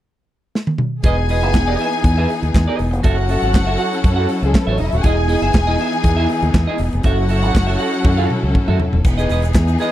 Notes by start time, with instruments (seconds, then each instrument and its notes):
0.55 snare
0.67 high tom
0.78 mid tom
1.03 fingered electric bass E1, string section E3 B3 D#4 G#4 G#5, clean electric guitar G#4 B4 D#5, kick, closed hi-hat
1.17 muted clean electric guitar stroke
1.29 clean electric guitar G#4 B4 D#5, open hi-hat
1.42 fingered electric bass F#1, clean electric guitar G#4 B4 E5, closed hi-hat
1.53 fingered electric bass E1, muted clean electric guitar stroke, kick, snare, clap, closed hi-hat
1.68 clean electric guitar G#4 B4 D#5
1.79 clean electric guitar G#4 B4 E5, open hi-hat
1.92 muted clean electric guitar stroke, closed hi-hat
2.04 fingered electric bass E2, muted clean electric guitar stroke, kick, closed hi-hat
2.18 clean electric guitar G#4 B4 E5
2.29 muted clean electric guitar stroke, open hi-hat
2.42 fingered electric bass D#2, muted clean electric guitar stroke, closed hi-hat
2.54 fingered electric bass E2, muted clean electric guitar stroke, kick, snare, clap, closed hi-hat
2.68 clean electric guitar G#4 B4 D#5
2.79 fingered electric bass E1, muted clean electric guitar stroke, open hi-hat
2.91 fingered electric bass F1, muted clean electric guitar stroke, closed hi-hat
3.03 fingered electric bass F#1, string section F#3 C#4 E4 F#4 A4 F#5, clean electric guitar F#4 A4 E5, kick, closed hi-hat
3.17 muted clean electric guitar stroke
3.29 clean electric guitar F#4 A4 E5, open hi-hat
3.42 fingered electric bass G#1, clean electric guitar F#4 A4 F#5, closed hi-hat
3.54 fingered electric bass F#1, muted clean electric guitar stroke, kick, snare, clap, closed hi-hat
3.67 clean electric guitar F#4 A4 E5
3.78 clean electric guitar F#4 A4 F#5, open hi-hat
3.92 muted clean electric guitar stroke, closed hi-hat
4.03 fingered electric bass F#2, muted clean electric guitar stroke, kick, closed hi-hat
4.16 clean electric guitar F#4 A4 F#5
4.29 muted clean electric guitar stroke, open hi-hat
4.42 fingered electric bass C#2, string section G#3 G#4, muted clean electric guitar stroke, closed hi-hat
4.53 string section A3 A4, muted clean electric guitar stroke, kick, snare, clap, closed hi-hat
4.62 string section B3 B4
4.67 fingered electric bass A1, clean electric guitar F#4 A4 E5
4.71 string section C#4 C#5
4.78 fingered electric bass E1, string section D#4 D#5, muted clean electric guitar stroke, open hi-hat
4.87 string section E4 E5
4.92 fingered electric bass D#1, muted clean electric guitar stroke, closed hi-hat
4.96 string section F#4 F#5
5.03 fingered electric bass E1, string section E3 B3 D#4 G#4 G#5, clean electric guitar E4 G#4 D#5, kick, closed hi-hat
5.17 muted clean electric guitar stroke
5.28 clean electric guitar E4 G#4 D#5, open hi-hat
5.42 fingered electric bass F#1, clean electric guitar E4 G#4 E5, closed hi-hat
5.53 fingered electric bass E1, muted clean electric guitar stroke, kick, snare, clap, closed hi-hat
5.67 clean electric guitar E4 G#4 D#5
5.79 clean electric guitar E4 G#4 E5, open hi-hat
5.92 muted clean electric guitar stroke, closed hi-hat
6.04 fingered electric bass E2, muted clean electric guitar stroke, kick, closed hi-hat
6.17 clean electric guitar E4 G#4 E5
6.29 muted clean electric guitar stroke, open hi-hat
6.42 fingered electric bass D#2, muted clean electric guitar stroke, closed hi-hat
6.54 fingered electric bass E2, muted clean electric guitar stroke, kick, snare, clap, closed hi-hat
6.67 clean electric guitar E4 G#4 D#5
6.78 fingered electric bass E1, muted clean electric guitar stroke, open hi-hat
6.93 fingered electric bass F1, muted clean electric guitar stroke, closed hi-hat
7.03 fingered electric bass F#1, string section F#3 C#4 E4 F#4 A4 F#5, clean electric guitar F#4 A4 E5, kick, closed hi-hat
7.18 muted clean electric guitar stroke
7.29 clean electric guitar F#4 A4 E5, open hi-hat
7.43 fingered electric bass G#1, clean electric guitar F#4 A4 F#5, closed hi-hat
7.55 fingered electric bass F#1, muted clean electric guitar stroke, kick, snare, clap, closed hi-hat
7.67 clean electric guitar F#4 A4 E5
7.79 clean electric guitar F#4 A4 F#5, open hi-hat
7.93 muted clean electric guitar stroke, closed hi-hat
8.05 fingered electric bass F#2, muted clean electric guitar stroke, kick, high tom
8.17 clean electric guitar F#4 A4 F#5
8.29 muted clean electric guitar stroke, mid tom
8.43 fingered electric bass C#2, muted clean electric guitar stroke
8.54 muted clean electric guitar stroke, kick, mid tom
8.68 fingered electric bass F#2, clean electric guitar F#4 A4 E5, mid tom
8.79 muted clean electric guitar stroke, floor tom
8.93 fingered electric bass D#1, muted clean electric guitar stroke, floor tom
9.04 fingered electric bass E1, string section E3 B3 D#4 G#4, muted clean electric guitar stroke, kick, crash, shaker
9.18 clean electric guitar G#4 B4 D#5, shaker
9.29 fingered electric bass E1, clean electric guitar G#4 B4 D#5, open hi-hat, shaker
9.42 muted clean electric guitar stroke, closed hi-hat, shaker
9.53 fingered electric bass E2, kick, snare, clap, closed hi-hat, shaker
9.68 muted clean electric guitar stroke, shaker
9.78 clean electric guitar G#4 B4 D#5, open hi-hat, shaker